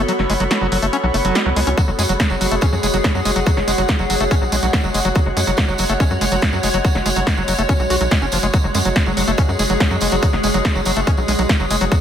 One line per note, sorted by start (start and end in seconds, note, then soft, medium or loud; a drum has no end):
0.00 1.78 B3 medium
0.00 12.01 F#4 medium
0.00 1.80 A4 medium
0.00 12.01 C#5 medium
0.00 2.99 B5 medium
0.08 0.12 F#3 loud
0.08 closed hi-hat medium
0.19 0.26 F#1 medium
0.19 0.21 F#3 medium
0.19 snare soft
0.30 0.37 F#1 loud
0.30 0.33 G#3 medium
0.30 open hi-hat loud
0.40 0.47 F#1 medium
0.40 0.44 F#3 medium
0.40 closed hi-hat medium
0.51 0.53 F#3 medium
0.51 snare loud
0.51 closed hi-hat medium
0.61 0.69 F#1 medium
0.61 0.67 F#3 medium
0.72 0.79 F#1 loud
0.72 0.78 F#3 medium
0.72 open hi-hat loud
0.82 0.90 F#1 medium
0.82 0.86 A3 medium
0.82 closed hi-hat medium
0.93 0.97 C#4 loud
0.93 closed hi-hat medium
1.04 1.11 B1 medium
1.04 1.06 F#3 medium
1.14 1.21 F#1 loud
1.14 1.16 A3 medium
1.14 open hi-hat loud
1.25 1.32 F#1 medium
1.25 1.37 F#3 medium
1.25 closed hi-hat medium
1.35 1.39 G#3 medium
1.35 snare loud
1.35 closed hi-hat medium
1.46 1.53 C#2 medium
1.46 1.50 F#3 medium
1.56 1.64 C#2 loud
1.56 1.60 G#3 medium
1.56 open hi-hat loud
1.67 1.74 C#2 medium
1.67 1.69 C#4 medium
1.67 closed hi-hat medium
1.78 1.81 F#3 loud
1.78 12.01 G#3 medium
1.78 5.18 G#4 medium
1.78 kick loud
1.78 closed hi-hat medium
1.78 tambourine medium
1.88 1.95 F#1 medium
1.88 1.90 F#3 medium
1.99 2.06 F#2 loud
1.99 2.02 G#3 medium
1.99 open hi-hat loud
1.99 tambourine medium
2.09 2.16 F#1 medium
2.09 2.13 F#3 medium
2.09 closed hi-hat medium
2.09 tambourine soft
2.20 2.22 F#3 medium
2.20 kick loud
2.20 snare loud
2.20 closed hi-hat medium
2.20 tambourine soft
2.30 2.38 F#1 medium
2.30 2.36 F#3 medium
2.30 tambourine soft
2.41 2.48 F#1 loud
2.41 2.47 F#3 medium
2.41 open hi-hat loud
2.41 tambourine medium
2.51 2.59 F#1 loud
2.51 2.55 A3 loud
2.51 closed hi-hat medium
2.51 tambourine soft
2.61 2.66 C#4 loud
2.61 kick loud
2.61 closed hi-hat medium
2.61 tambourine medium
2.73 2.80 F#2 medium
2.73 2.75 F#3 medium
2.73 tambourine soft
2.83 2.90 F#1 loud
2.83 2.87 G#3 medium
2.83 open hi-hat loud
2.83 tambourine medium
2.94 3.01 F#1 loud
2.94 2.97 F#3 medium
2.94 9.75 F#5 medium
2.94 closed hi-hat medium
2.94 tambourine soft
3.04 3.07 F#3 medium
3.04 kick loud
3.04 snare loud
3.04 closed hi-hat medium
3.04 tambourine medium
3.15 3.22 F#2 medium
3.15 3.21 F#3 medium
3.15 tambourine soft
3.25 3.33 F#1 medium
3.25 3.31 G#3 medium
3.25 open hi-hat loud
3.25 tambourine loud
3.36 3.43 F#1 medium
3.36 3.40 F#3 loud
3.36 closed hi-hat medium
3.36 tambourine soft
3.46 3.50 F#3 loud
3.46 kick loud
3.46 closed hi-hat medium
3.46 tambourine medium
3.57 3.64 F#1 medium
3.57 3.59 F#3 medium
3.57 snare soft
3.68 3.75 F#1 loud
3.68 3.71 G#3 medium
3.68 open hi-hat loud
3.68 tambourine medium
3.78 3.85 F#1 medium
3.78 3.82 F#3 medium
3.78 closed hi-hat medium
3.78 tambourine soft
3.88 3.91 F#3 medium
3.88 kick loud
3.88 snare loud
3.88 closed hi-hat medium
3.88 tambourine medium
3.99 4.07 F#1 medium
3.99 4.05 F#3 medium
3.99 tambourine soft
4.10 4.17 F#1 loud
4.10 4.16 F#3 medium
4.10 open hi-hat loud
4.10 tambourine medium
4.20 4.28 F#1 medium
4.20 4.24 A3 loud
4.20 closed hi-hat medium
4.20 tambourine soft
4.31 4.35 C#4 loud
4.31 kick loud
4.31 closed hi-hat medium
4.31 tambourine medium
4.42 4.49 B1 medium
4.42 4.44 F#3 medium
4.42 tambourine soft
4.52 4.59 B1 loud
4.52 4.56 G#3 medium
4.52 open hi-hat loud
4.52 tambourine loud
4.63 4.70 B1 medium
4.63 4.67 F#3 medium
4.63 closed hi-hat medium
4.63 tambourine soft
4.73 4.76 F#3 medium
4.73 kick loud
4.73 snare loud
4.73 closed hi-hat medium
4.73 tambourine medium
4.84 4.91 F#1 medium
4.84 4.90 F#3 medium
4.84 tambourine soft
4.94 5.02 F#1 loud
4.94 5.00 G#3 medium
4.94 open hi-hat loud
4.94 tambourine loud
5.05 5.12 F#1 medium
5.05 5.09 F#3 loud
5.05 closed hi-hat medium
5.05 tambourine soft
5.15 5.19 F#3 loud
5.15 8.56 C#5 medium
5.15 kick loud
5.15 closed hi-hat medium
5.15 tambourine medium
5.26 5.33 F#1 medium
5.26 5.28 F#3 medium
5.37 5.44 F#2 loud
5.37 5.40 G#3 medium
5.37 open hi-hat loud
5.37 tambourine medium
5.47 5.54 F#1 medium
5.47 5.51 F#3 medium
5.47 closed hi-hat medium
5.47 tambourine soft
5.57 5.60 F#3 medium
5.57 kick loud
5.57 snare loud
5.57 closed hi-hat medium
5.57 tambourine medium
5.68 5.76 F#1 medium
5.68 5.74 F#3 medium
5.68 tambourine soft
5.78 5.86 F#1 loud
5.78 5.85 F#3 medium
5.78 open hi-hat loud
5.78 tambourine loud
5.89 5.97 F#1 medium
5.89 5.93 A3 loud
5.89 closed hi-hat medium
5.89 tambourine soft
6.00 6.04 C#4 loud
6.00 kick loud
6.00 closed hi-hat medium
6.00 tambourine medium
6.11 6.18 F#2 medium
6.11 6.13 F#3 medium
6.11 tambourine soft
6.21 6.28 F#1 loud
6.21 6.25 G#3 medium
6.21 open hi-hat loud
6.21 tambourine medium
6.32 6.39 F#1 medium
6.32 6.36 F#3 medium
6.32 closed hi-hat medium
6.32 tambourine soft
6.42 6.45 F#3 medium
6.42 kick loud
6.42 snare loud
6.42 closed hi-hat medium
6.42 tambourine soft
6.53 6.60 F#2 medium
6.53 6.59 F#3 medium
6.53 tambourine soft
6.63 6.71 F#1 loud
6.63 6.69 G#3 medium
6.63 open hi-hat loud
6.63 tambourine loud
6.74 6.81 F#1 medium
6.74 6.78 F#3 loud
6.74 closed hi-hat medium
6.74 tambourine soft
6.85 6.88 F#3 loud
6.85 kick loud
6.85 closed hi-hat medium
6.85 tambourine medium
6.95 7.02 F#1 medium
6.95 6.97 F#3 medium
6.95 snare soft
7.06 7.13 F#1 loud
7.06 7.09 G#3 medium
7.06 open hi-hat loud
7.06 tambourine medium
7.16 7.23 F#1 medium
7.16 7.20 F#3 medium
7.16 closed hi-hat medium
7.16 tambourine soft
7.27 7.29 F#3 medium
7.27 kick loud
7.27 snare loud
7.27 closed hi-hat medium
7.27 tambourine medium
7.37 7.45 F#1 medium
7.37 7.43 F#3 medium
7.37 tambourine soft
7.48 7.55 F#1 loud
7.48 7.54 F#3 medium
7.48 open hi-hat loud
7.48 tambourine medium
7.59 7.66 F#1 loud
7.59 7.62 A3 loud
7.59 closed hi-hat medium
7.59 tambourine soft
7.69 7.73 C#4 loud
7.69 kick loud
7.69 closed hi-hat medium
7.69 tambourine medium
7.80 7.87 B1 medium
7.80 7.82 F#3 medium
7.80 tambourine soft
7.90 7.97 B1 loud
7.90 7.96 F#4 medium
7.90 open hi-hat loud
7.90 tambourine medium
8.01 8.08 B1 loud
8.01 8.03 F#3 medium
8.01 closed hi-hat medium
8.01 tambourine soft
8.11 8.15 G#3 loud
8.11 kick loud
8.11 snare loud
8.11 closed hi-hat medium
8.11 tambourine medium
8.22 8.29 F#1 medium
8.22 8.26 C#4 medium
8.22 tambourine soft
8.32 8.40 F#1 loud
8.32 8.38 F3 medium
8.32 open hi-hat loud
8.32 tambourine loud
8.43 8.50 F#1 medium
8.43 8.47 G#3 medium
8.43 closed hi-hat medium
8.43 tambourine soft
8.53 8.57 F#3 loud
8.53 11.94 G#4 medium
8.53 kick loud
8.53 closed hi-hat medium
8.53 tambourine medium
8.64 8.71 F#1 medium
8.64 8.66 F#3 medium
8.74 8.82 F#2 loud
8.74 8.78 G#3 medium
8.74 open hi-hat loud
8.74 tambourine loud
8.85 8.92 F#1 medium
8.85 8.89 F#3 medium
8.85 closed hi-hat medium
8.85 tambourine soft
8.96 8.98 F#3 medium
8.96 kick loud
8.96 snare loud
8.96 closed hi-hat medium
8.96 tambourine medium
9.06 9.14 F#1 medium
9.06 9.12 F#3 medium
9.06 tambourine soft
9.17 9.24 F#1 loud
9.17 9.23 F#3 medium
9.17 open hi-hat loud
9.17 tambourine medium
9.28 9.35 F#1 medium
9.28 9.31 A3 loud
9.28 closed hi-hat medium
9.28 tambourine soft
9.38 9.42 C#4 loud
9.38 kick loud
9.38 closed hi-hat medium
9.38 tambourine soft
9.49 9.56 F#2 medium
9.49 9.51 F#3 medium
9.49 tambourine soft
9.59 9.66 F#1 loud
9.59 9.63 G#3 medium
9.59 open hi-hat loud
9.59 tambourine medium
9.70 9.77 F#1 medium
9.70 9.74 F#3 medium
9.70 closed hi-hat medium
9.70 tambourine soft
9.80 9.83 F#3 medium
9.80 kick loud
9.80 snare loud
9.80 closed hi-hat medium
9.80 tambourine soft
9.91 9.98 F#2 medium
9.91 9.97 F#3 medium
9.91 tambourine soft
10.01 10.09 F#1 loud
10.01 10.07 G#3 medium
10.01 open hi-hat loud
10.01 tambourine medium
10.12 10.19 F#1 medium
10.12 10.16 F#3 loud
10.12 closed hi-hat medium
10.12 tambourine soft
10.22 10.26 F#3 loud
10.22 kick loud
10.22 closed hi-hat medium
10.22 tambourine soft
10.33 10.40 F#1 medium
10.33 10.35 F#3 medium
10.33 snare soft
10.43 10.51 F#1 loud
10.43 10.47 G#3 medium
10.43 open hi-hat loud
10.43 tambourine medium
10.54 10.61 F#1 medium
10.54 10.58 F#3 medium
10.54 closed hi-hat medium
10.54 tambourine soft
10.65 10.67 F#3 medium
10.65 kick loud
10.65 snare loud
10.65 closed hi-hat medium
10.65 tambourine soft
10.75 10.83 F#1 medium
10.75 10.81 F#3 medium
10.75 tambourine soft
10.85 10.93 F#1 loud
10.85 10.92 F#3 medium
10.85 open hi-hat loud
10.85 tambourine medium
10.96 11.04 F#1 medium
10.96 11.00 A3 loud
10.96 closed hi-hat medium
10.96 tambourine soft
11.07 11.11 C#4 loud
11.07 kick loud
11.07 closed hi-hat medium
11.07 tambourine soft
11.17 11.25 B1 medium
11.17 11.20 F#3 medium
11.17 tambourine soft
11.28 11.35 B1 loud
11.28 11.32 G#3 medium
11.28 open hi-hat loud
11.28 tambourine medium
11.39 11.46 B1 loud
11.39 11.43 F#3 medium
11.39 closed hi-hat medium
11.39 tambourine soft
11.49 11.52 F#3 medium
11.49 kick loud
11.49 snare loud
11.49 closed hi-hat medium
11.49 tambourine soft
11.60 11.67 F#1 medium
11.60 11.66 F#3 medium
11.60 tambourine soft
11.70 11.78 F#1 loud
11.70 11.76 G#3 medium
11.70 open hi-hat loud
11.70 tambourine medium
11.81 11.88 F#1 medium
11.81 11.85 F#3 loud
11.81 closed hi-hat medium
11.81 tambourine soft
11.92 11.95 F#3 loud
11.92 12.01 F#4 medium
11.92 kick loud
11.92 closed hi-hat medium
11.92 tambourine medium